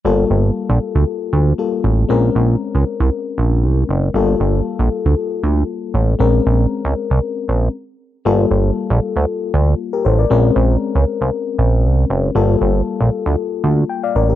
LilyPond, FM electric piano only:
\new Staff \with { instrumentName = "FM electric piano" } { \time 4/4 \key g \minor \tempo 4 = 117 << { r1 | r1 | r1 | r1 |
r2. r16 <g' bes'>16 <a' c''>16 <bes' d''>16~ | <bes' d''>16 r2. r8. | r2. g''16 <d'' f''>16 <bes' d''>16 <g' bes'>16 | } \\ { <g bes f' a'>2. <g bes f' a'>4 | <aes c' des' bes'>1 | <g bes f' a'>1 | <aes c' des' bes'>2. r4 |
<g bes f' a'>1 | <aes c' des' bes'>1 | <g bes f' a'>1 | } >> }